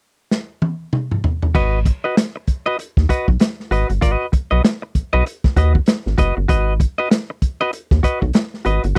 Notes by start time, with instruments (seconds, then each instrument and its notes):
0.31 snare
0.62 high tom
0.93 mid tom
1.11 mid tom
1.24 floor tom
1.42 floor tom
1.55 analog synth bass G#1, clean electric guitar F#4 B4 D#5, kick, crash
1.85 muted clean electric guitar stroke, kick, closed hi-hat
2.04 clean electric guitar F#4 B4 D#5
2.17 muted clean electric guitar stroke, snare, closed hi-hat
2.36 muted clean electric guitar stroke
2.47 kick, closed hi-hat
2.66 clean electric guitar F#4 B4 D#5
2.79 muted clean electric guitar stroke, closed hi-hat
2.97 analog synth bass D#2, kick, snare
3.09 clean electric guitar F#4 B4 D#5, kick, closed hi-hat
3.28 analog synth bass B1, muted clean electric guitar stroke, kick
3.40 muted clean electric guitar stroke, snare, closed hi-hat
3.60 snare
3.71 analog synth bass G#1, clean electric guitar F#4 B4 D#5, closed hi-hat
3.89 analog synth bass G1, muted clean electric guitar stroke, closed hi-hat
4.01 analog synth bass G#1, clean electric guitar F#4 B4 D#5, kick, closed hi-hat
4.32 muted clean electric guitar stroke, kick, closed hi-hat
4.51 analog synth bass B1, clean electric guitar F#4 B4 D#5
4.65 snare, closed hi-hat
4.82 muted clean electric guitar stroke
4.95 analog synth bass B1, kick, closed hi-hat
5.13 analog synth bass B1, clean electric guitar F#4 B4 D#5
5.26 muted clean electric guitar stroke, closed hi-hat
5.44 kick, snare
5.56 analog synth bass D#2, clean electric guitar F#4 B4 D#5, kick, closed hi-hat
5.75 muted clean electric guitar stroke, kick
5.86 muted clean electric guitar stroke, snare, closed hi-hat
6.06 analog synth bass G#1, snare
6.18 analog synth bass F#1, clean electric guitar F#4 B4 D#5, kick, closed hi-hat
6.37 analog synth bass G1, muted clean electric guitar stroke
6.48 analog synth bass G#1, clean electric guitar F#4 B4 D#5, kick, closed hi-hat
6.80 muted clean electric guitar stroke, kick, closed hi-hat
6.98 clean electric guitar F#4 B4 D#5
7.11 snare, closed hi-hat
7.30 muted clean electric guitar stroke
7.42 kick, closed hi-hat
7.61 clean electric guitar F#4 B4 D#5
7.73 muted clean electric guitar stroke, closed hi-hat
7.91 analog synth bass D#2, kick, snare
8.03 clean electric guitar F#4 B4 D#5, kick, closed hi-hat
8.21 analog synth bass B1, muted clean electric guitar stroke, kick
8.33 muted clean electric guitar stroke, snare, closed hi-hat
8.54 snare
8.65 analog synth bass G#1, clean electric guitar F#4 B4 D#5, closed hi-hat
8.84 analog synth bass G1, muted clean electric guitar stroke, closed hi-hat
8.95 clean electric guitar F#4